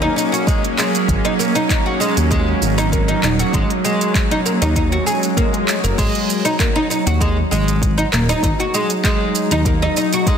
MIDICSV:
0, 0, Header, 1, 6, 480
1, 0, Start_track
1, 0, Tempo, 612245
1, 853, Time_signature, 4, 2, 24, 8
1, 8137, End_track
2, 0, Start_track
2, 0, Title_t, "Oud"
2, 0, Program_c, 0, 24
2, 13, Note_on_c, 0, 63, 96
2, 118, Note_off_c, 0, 63, 0
2, 128, Note_on_c, 0, 63, 65
2, 250, Note_off_c, 0, 63, 0
2, 253, Note_on_c, 0, 66, 70
2, 358, Note_off_c, 0, 66, 0
2, 368, Note_on_c, 0, 56, 75
2, 491, Note_off_c, 0, 56, 0
2, 611, Note_on_c, 0, 56, 68
2, 966, Note_off_c, 0, 56, 0
2, 978, Note_on_c, 0, 63, 95
2, 1044, Note_off_c, 0, 63, 0
2, 1091, Note_on_c, 0, 58, 73
2, 1213, Note_off_c, 0, 58, 0
2, 1218, Note_on_c, 0, 63, 98
2, 1320, Note_off_c, 0, 63, 0
2, 1332, Note_on_c, 0, 63, 81
2, 1453, Note_off_c, 0, 63, 0
2, 1458, Note_on_c, 0, 66, 71
2, 1561, Note_off_c, 0, 66, 0
2, 1569, Note_on_c, 0, 56, 69
2, 1691, Note_off_c, 0, 56, 0
2, 1808, Note_on_c, 0, 56, 79
2, 2165, Note_off_c, 0, 56, 0
2, 2178, Note_on_c, 0, 63, 92
2, 2244, Note_off_c, 0, 63, 0
2, 2292, Note_on_c, 0, 58, 71
2, 2413, Note_off_c, 0, 58, 0
2, 2417, Note_on_c, 0, 63, 88
2, 2520, Note_off_c, 0, 63, 0
2, 2537, Note_on_c, 0, 63, 72
2, 2656, Note_off_c, 0, 63, 0
2, 2663, Note_on_c, 0, 66, 67
2, 2763, Note_off_c, 0, 66, 0
2, 2773, Note_on_c, 0, 56, 71
2, 2894, Note_off_c, 0, 56, 0
2, 3014, Note_on_c, 0, 56, 74
2, 3368, Note_off_c, 0, 56, 0
2, 3382, Note_on_c, 0, 63, 96
2, 3445, Note_off_c, 0, 63, 0
2, 3493, Note_on_c, 0, 58, 71
2, 3614, Note_off_c, 0, 58, 0
2, 3621, Note_on_c, 0, 63, 90
2, 3722, Note_off_c, 0, 63, 0
2, 3733, Note_on_c, 0, 63, 79
2, 3854, Note_off_c, 0, 63, 0
2, 3858, Note_on_c, 0, 66, 70
2, 3961, Note_off_c, 0, 66, 0
2, 3970, Note_on_c, 0, 68, 69
2, 4086, Note_off_c, 0, 68, 0
2, 4212, Note_on_c, 0, 58, 89
2, 4327, Note_off_c, 0, 58, 0
2, 4577, Note_on_c, 0, 58, 70
2, 4680, Note_off_c, 0, 58, 0
2, 4688, Note_on_c, 0, 56, 72
2, 5045, Note_off_c, 0, 56, 0
2, 5056, Note_on_c, 0, 63, 94
2, 5122, Note_off_c, 0, 63, 0
2, 5171, Note_on_c, 0, 58, 76
2, 5293, Note_off_c, 0, 58, 0
2, 5296, Note_on_c, 0, 63, 98
2, 5400, Note_off_c, 0, 63, 0
2, 5411, Note_on_c, 0, 63, 64
2, 5533, Note_off_c, 0, 63, 0
2, 5540, Note_on_c, 0, 66, 71
2, 5642, Note_off_c, 0, 66, 0
2, 5651, Note_on_c, 0, 56, 75
2, 5773, Note_off_c, 0, 56, 0
2, 5890, Note_on_c, 0, 56, 72
2, 6246, Note_off_c, 0, 56, 0
2, 6253, Note_on_c, 0, 63, 87
2, 6321, Note_off_c, 0, 63, 0
2, 6369, Note_on_c, 0, 58, 72
2, 6492, Note_off_c, 0, 58, 0
2, 6501, Note_on_c, 0, 63, 93
2, 6602, Note_off_c, 0, 63, 0
2, 6615, Note_on_c, 0, 63, 71
2, 6735, Note_off_c, 0, 63, 0
2, 6740, Note_on_c, 0, 66, 70
2, 6842, Note_off_c, 0, 66, 0
2, 6854, Note_on_c, 0, 56, 72
2, 6974, Note_off_c, 0, 56, 0
2, 7094, Note_on_c, 0, 56, 82
2, 7448, Note_off_c, 0, 56, 0
2, 7463, Note_on_c, 0, 63, 100
2, 7526, Note_off_c, 0, 63, 0
2, 7576, Note_on_c, 0, 58, 78
2, 7695, Note_off_c, 0, 58, 0
2, 7702, Note_on_c, 0, 63, 92
2, 7803, Note_off_c, 0, 63, 0
2, 7815, Note_on_c, 0, 63, 68
2, 7935, Note_off_c, 0, 63, 0
2, 7945, Note_on_c, 0, 66, 72
2, 8044, Note_off_c, 0, 66, 0
2, 8055, Note_on_c, 0, 56, 77
2, 8137, Note_off_c, 0, 56, 0
2, 8137, End_track
3, 0, Start_track
3, 0, Title_t, "Synth drone"
3, 0, Program_c, 1, 95
3, 0, Note_on_c, 1, 54, 89
3, 0, Note_on_c, 1, 58, 79
3, 0, Note_on_c, 1, 61, 74
3, 0, Note_on_c, 1, 68, 82
3, 4692, Note_off_c, 1, 68, 0
3, 4693, Note_off_c, 1, 58, 0
3, 5071, Note_on_c, 1, 63, 98
3, 5198, Note_on_c, 1, 68, 83
3, 5783, Note_off_c, 1, 61, 0
3, 8137, Note_off_c, 1, 54, 0
3, 8137, Note_off_c, 1, 63, 0
3, 8137, Note_off_c, 1, 68, 0
3, 8137, End_track
4, 0, Start_track
4, 0, Title_t, "Analog synth bass"
4, 0, Program_c, 2, 38
4, 849, Note_on_c, 2, 32, 100
4, 929, Note_off_c, 2, 32, 0
4, 1700, Note_on_c, 2, 39, 72
4, 1984, Note_off_c, 2, 39, 0
4, 2051, Note_on_c, 2, 32, 88
4, 2463, Note_off_c, 2, 32, 0
4, 2531, Note_on_c, 2, 27, 91
4, 2685, Note_off_c, 2, 27, 0
4, 2770, Note_on_c, 2, 32, 96
4, 2850, Note_off_c, 2, 32, 0
4, 3621, Note_on_c, 2, 39, 74
4, 3904, Note_off_c, 2, 39, 0
4, 4580, Note_on_c, 2, 30, 99
4, 4650, Note_off_c, 2, 30, 0
4, 4690, Note_on_c, 2, 32, 105
4, 4770, Note_off_c, 2, 32, 0
4, 5539, Note_on_c, 2, 39, 80
4, 5823, Note_off_c, 2, 39, 0
4, 5893, Note_on_c, 2, 32, 86
4, 6303, Note_off_c, 2, 32, 0
4, 6373, Note_on_c, 2, 27, 96
4, 6526, Note_off_c, 2, 27, 0
4, 6608, Note_on_c, 2, 32, 100
4, 6689, Note_off_c, 2, 32, 0
4, 7455, Note_on_c, 2, 39, 72
4, 7741, Note_off_c, 2, 39, 0
4, 8137, End_track
5, 0, Start_track
5, 0, Title_t, "Swell"
5, 0, Program_c, 3, 103
5, 3731, Note_on_c, 3, 60, 53
5, 4692, Note_off_c, 3, 60, 0
5, 8137, End_track
6, 0, Start_track
6, 0, Title_t, "Drums"
6, 144, Note_on_c, 9, 82, 66
6, 222, Note_off_c, 9, 82, 0
6, 265, Note_on_c, 9, 42, 29
6, 269, Note_on_c, 9, 82, 41
6, 343, Note_off_c, 9, 42, 0
6, 347, Note_off_c, 9, 82, 0
6, 369, Note_on_c, 9, 36, 99
6, 379, Note_on_c, 9, 42, 62
6, 383, Note_on_c, 9, 82, 29
6, 448, Note_off_c, 9, 36, 0
6, 458, Note_off_c, 9, 42, 0
6, 461, Note_off_c, 9, 82, 0
6, 505, Note_on_c, 9, 42, 31
6, 584, Note_off_c, 9, 42, 0
6, 616, Note_on_c, 9, 39, 71
6, 619, Note_on_c, 9, 82, 71
6, 694, Note_off_c, 9, 39, 0
6, 698, Note_off_c, 9, 82, 0
6, 744, Note_on_c, 9, 42, 29
6, 747, Note_on_c, 9, 82, 42
6, 822, Note_off_c, 9, 42, 0
6, 826, Note_off_c, 9, 82, 0
6, 850, Note_on_c, 9, 36, 92
6, 855, Note_on_c, 9, 42, 67
6, 858, Note_on_c, 9, 82, 31
6, 928, Note_off_c, 9, 36, 0
6, 933, Note_off_c, 9, 42, 0
6, 937, Note_off_c, 9, 82, 0
6, 982, Note_on_c, 9, 42, 33
6, 1060, Note_off_c, 9, 42, 0
6, 1099, Note_on_c, 9, 82, 67
6, 1178, Note_off_c, 9, 82, 0
6, 1221, Note_on_c, 9, 42, 39
6, 1224, Note_on_c, 9, 82, 39
6, 1299, Note_off_c, 9, 42, 0
6, 1303, Note_off_c, 9, 82, 0
6, 1330, Note_on_c, 9, 36, 95
6, 1336, Note_on_c, 9, 39, 73
6, 1336, Note_on_c, 9, 42, 68
6, 1340, Note_on_c, 9, 82, 31
6, 1408, Note_off_c, 9, 36, 0
6, 1415, Note_off_c, 9, 39, 0
6, 1415, Note_off_c, 9, 42, 0
6, 1418, Note_off_c, 9, 82, 0
6, 1578, Note_on_c, 9, 82, 65
6, 1656, Note_off_c, 9, 82, 0
6, 1702, Note_on_c, 9, 42, 42
6, 1706, Note_on_c, 9, 82, 40
6, 1781, Note_off_c, 9, 42, 0
6, 1784, Note_off_c, 9, 82, 0
6, 1810, Note_on_c, 9, 36, 91
6, 1814, Note_on_c, 9, 42, 67
6, 1818, Note_on_c, 9, 82, 33
6, 1888, Note_off_c, 9, 36, 0
6, 1893, Note_off_c, 9, 42, 0
6, 1896, Note_off_c, 9, 82, 0
6, 2057, Note_on_c, 9, 82, 66
6, 2135, Note_off_c, 9, 82, 0
6, 2183, Note_on_c, 9, 42, 30
6, 2187, Note_on_c, 9, 82, 43
6, 2262, Note_off_c, 9, 42, 0
6, 2265, Note_off_c, 9, 82, 0
6, 2290, Note_on_c, 9, 36, 91
6, 2297, Note_on_c, 9, 42, 64
6, 2301, Note_on_c, 9, 82, 29
6, 2368, Note_off_c, 9, 36, 0
6, 2376, Note_off_c, 9, 42, 0
6, 2379, Note_off_c, 9, 82, 0
6, 2421, Note_on_c, 9, 42, 32
6, 2499, Note_off_c, 9, 42, 0
6, 2534, Note_on_c, 9, 39, 70
6, 2538, Note_on_c, 9, 82, 68
6, 2612, Note_off_c, 9, 39, 0
6, 2616, Note_off_c, 9, 82, 0
6, 2661, Note_on_c, 9, 42, 30
6, 2665, Note_on_c, 9, 82, 41
6, 2739, Note_off_c, 9, 42, 0
6, 2743, Note_off_c, 9, 82, 0
6, 2770, Note_on_c, 9, 36, 93
6, 2776, Note_on_c, 9, 42, 63
6, 2780, Note_on_c, 9, 82, 30
6, 2848, Note_off_c, 9, 36, 0
6, 2854, Note_off_c, 9, 42, 0
6, 2858, Note_off_c, 9, 82, 0
6, 2904, Note_on_c, 9, 42, 33
6, 2982, Note_off_c, 9, 42, 0
6, 3018, Note_on_c, 9, 82, 67
6, 3097, Note_off_c, 9, 82, 0
6, 3146, Note_on_c, 9, 42, 43
6, 3149, Note_on_c, 9, 82, 39
6, 3224, Note_off_c, 9, 42, 0
6, 3228, Note_off_c, 9, 82, 0
6, 3250, Note_on_c, 9, 36, 93
6, 3257, Note_on_c, 9, 39, 76
6, 3257, Note_on_c, 9, 42, 65
6, 3260, Note_on_c, 9, 82, 32
6, 3329, Note_off_c, 9, 36, 0
6, 3335, Note_off_c, 9, 39, 0
6, 3335, Note_off_c, 9, 42, 0
6, 3339, Note_off_c, 9, 82, 0
6, 3383, Note_on_c, 9, 42, 32
6, 3461, Note_off_c, 9, 42, 0
6, 3497, Note_on_c, 9, 82, 69
6, 3575, Note_off_c, 9, 82, 0
6, 3621, Note_on_c, 9, 42, 44
6, 3625, Note_on_c, 9, 82, 40
6, 3699, Note_off_c, 9, 42, 0
6, 3703, Note_off_c, 9, 82, 0
6, 3730, Note_on_c, 9, 36, 89
6, 3733, Note_on_c, 9, 42, 67
6, 3737, Note_on_c, 9, 82, 34
6, 3808, Note_off_c, 9, 36, 0
6, 3812, Note_off_c, 9, 42, 0
6, 3816, Note_off_c, 9, 82, 0
6, 3860, Note_on_c, 9, 42, 31
6, 3939, Note_off_c, 9, 42, 0
6, 3977, Note_on_c, 9, 82, 69
6, 4055, Note_off_c, 9, 82, 0
6, 4101, Note_on_c, 9, 42, 32
6, 4105, Note_on_c, 9, 82, 39
6, 4179, Note_off_c, 9, 42, 0
6, 4183, Note_off_c, 9, 82, 0
6, 4209, Note_on_c, 9, 36, 95
6, 4215, Note_on_c, 9, 42, 66
6, 4219, Note_on_c, 9, 82, 29
6, 4288, Note_off_c, 9, 36, 0
6, 4293, Note_off_c, 9, 42, 0
6, 4297, Note_off_c, 9, 82, 0
6, 4343, Note_on_c, 9, 42, 33
6, 4422, Note_off_c, 9, 42, 0
6, 4454, Note_on_c, 9, 39, 74
6, 4458, Note_on_c, 9, 82, 70
6, 4532, Note_off_c, 9, 39, 0
6, 4536, Note_off_c, 9, 82, 0
6, 4582, Note_on_c, 9, 42, 33
6, 4586, Note_on_c, 9, 82, 43
6, 4661, Note_off_c, 9, 42, 0
6, 4665, Note_off_c, 9, 82, 0
6, 4690, Note_on_c, 9, 36, 98
6, 4695, Note_on_c, 9, 42, 62
6, 4695, Note_on_c, 9, 49, 66
6, 4699, Note_on_c, 9, 82, 31
6, 4768, Note_off_c, 9, 36, 0
6, 4773, Note_off_c, 9, 42, 0
6, 4773, Note_off_c, 9, 49, 0
6, 4777, Note_off_c, 9, 82, 0
6, 4822, Note_on_c, 9, 42, 34
6, 4901, Note_off_c, 9, 42, 0
6, 4938, Note_on_c, 9, 82, 73
6, 5016, Note_off_c, 9, 82, 0
6, 5059, Note_on_c, 9, 42, 44
6, 5063, Note_on_c, 9, 82, 40
6, 5138, Note_off_c, 9, 42, 0
6, 5141, Note_off_c, 9, 82, 0
6, 5170, Note_on_c, 9, 36, 98
6, 5175, Note_on_c, 9, 39, 84
6, 5175, Note_on_c, 9, 42, 66
6, 5179, Note_on_c, 9, 82, 31
6, 5248, Note_off_c, 9, 36, 0
6, 5254, Note_off_c, 9, 39, 0
6, 5254, Note_off_c, 9, 42, 0
6, 5257, Note_off_c, 9, 82, 0
6, 5418, Note_on_c, 9, 82, 74
6, 5496, Note_off_c, 9, 82, 0
6, 5542, Note_on_c, 9, 42, 46
6, 5546, Note_on_c, 9, 82, 41
6, 5621, Note_off_c, 9, 42, 0
6, 5624, Note_off_c, 9, 82, 0
6, 5649, Note_on_c, 9, 36, 100
6, 5656, Note_on_c, 9, 42, 71
6, 5660, Note_on_c, 9, 82, 35
6, 5727, Note_off_c, 9, 36, 0
6, 5735, Note_off_c, 9, 42, 0
6, 5738, Note_off_c, 9, 82, 0
6, 5898, Note_on_c, 9, 82, 67
6, 5976, Note_off_c, 9, 82, 0
6, 6023, Note_on_c, 9, 42, 31
6, 6026, Note_on_c, 9, 82, 40
6, 6101, Note_off_c, 9, 42, 0
6, 6105, Note_off_c, 9, 82, 0
6, 6128, Note_on_c, 9, 36, 99
6, 6136, Note_on_c, 9, 42, 66
6, 6140, Note_on_c, 9, 82, 30
6, 6207, Note_off_c, 9, 36, 0
6, 6214, Note_off_c, 9, 42, 0
6, 6218, Note_off_c, 9, 82, 0
6, 6264, Note_on_c, 9, 42, 31
6, 6342, Note_off_c, 9, 42, 0
6, 6375, Note_on_c, 9, 39, 79
6, 6379, Note_on_c, 9, 82, 73
6, 6453, Note_off_c, 9, 39, 0
6, 6457, Note_off_c, 9, 82, 0
6, 6501, Note_on_c, 9, 42, 32
6, 6505, Note_on_c, 9, 82, 43
6, 6580, Note_off_c, 9, 42, 0
6, 6583, Note_off_c, 9, 82, 0
6, 6608, Note_on_c, 9, 36, 95
6, 6613, Note_on_c, 9, 42, 64
6, 6617, Note_on_c, 9, 82, 33
6, 6687, Note_off_c, 9, 36, 0
6, 6691, Note_off_c, 9, 42, 0
6, 6695, Note_off_c, 9, 82, 0
6, 6743, Note_on_c, 9, 42, 32
6, 6821, Note_off_c, 9, 42, 0
6, 6855, Note_on_c, 9, 82, 72
6, 6933, Note_off_c, 9, 82, 0
6, 6977, Note_on_c, 9, 42, 39
6, 6981, Note_on_c, 9, 82, 42
6, 7055, Note_off_c, 9, 42, 0
6, 7059, Note_off_c, 9, 82, 0
6, 7087, Note_on_c, 9, 36, 97
6, 7092, Note_on_c, 9, 39, 77
6, 7092, Note_on_c, 9, 42, 67
6, 7096, Note_on_c, 9, 82, 33
6, 7166, Note_off_c, 9, 36, 0
6, 7171, Note_off_c, 9, 39, 0
6, 7171, Note_off_c, 9, 42, 0
6, 7174, Note_off_c, 9, 82, 0
6, 7333, Note_on_c, 9, 82, 75
6, 7411, Note_off_c, 9, 82, 0
6, 7457, Note_on_c, 9, 42, 40
6, 7461, Note_on_c, 9, 82, 43
6, 7536, Note_off_c, 9, 42, 0
6, 7540, Note_off_c, 9, 82, 0
6, 7568, Note_on_c, 9, 36, 106
6, 7571, Note_on_c, 9, 42, 67
6, 7575, Note_on_c, 9, 82, 35
6, 7646, Note_off_c, 9, 36, 0
6, 7649, Note_off_c, 9, 42, 0
6, 7653, Note_off_c, 9, 82, 0
6, 7815, Note_on_c, 9, 82, 70
6, 7894, Note_off_c, 9, 82, 0
6, 7939, Note_on_c, 9, 42, 30
6, 7942, Note_on_c, 9, 82, 46
6, 8017, Note_off_c, 9, 42, 0
6, 8021, Note_off_c, 9, 82, 0
6, 8047, Note_on_c, 9, 36, 103
6, 8050, Note_on_c, 9, 42, 59
6, 8054, Note_on_c, 9, 82, 30
6, 8126, Note_off_c, 9, 36, 0
6, 8128, Note_off_c, 9, 42, 0
6, 8132, Note_off_c, 9, 82, 0
6, 8137, End_track
0, 0, End_of_file